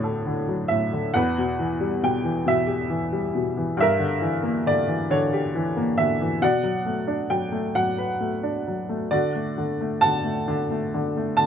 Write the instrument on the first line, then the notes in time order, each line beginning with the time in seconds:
upright piano
Already playing: D2 A2 D3 F#3 C#5 D5 E5
0.04 A4
0.26 D3
0.48 F#3
0.68 A2 E5
0.93 D3
1.14 E2 B4 F#5
1.38 B2
1.59 E3
1.81 G3
2.03 B2 G5
2.24 E3
2.46 B2 E5
2.67 G4
2.90 E3
3.12 G3
3.35 B2
3.57 E3
3.77 G2 E5
3.82 A#4
3.99 D3
4.21 E3
4.43 A#3
4.66 D3 D5
4.88 E3
5.10 D3 C#5
5.33 G4
5.55 E3
5.77 A#3
5.98 D3 E5
6.21 E3
6.42 B2 D5 F#5
6.63 F#3
6.86 A3
7.07 D4
7.30 F#3 G5
7.52 A3
7.75 F#3 F#5
7.98 B4
8.20 A3
8.43 D4
8.68 F#3
8.89 A3
9.11 D3 F#4 D5
9.35 A3
9.58 D3
9.81 A3
10.01 D3 F#5 A5
10.24 A3
10.48 D3
10.71 A3
10.94 D3
11.17 A3
11.37 D3 A5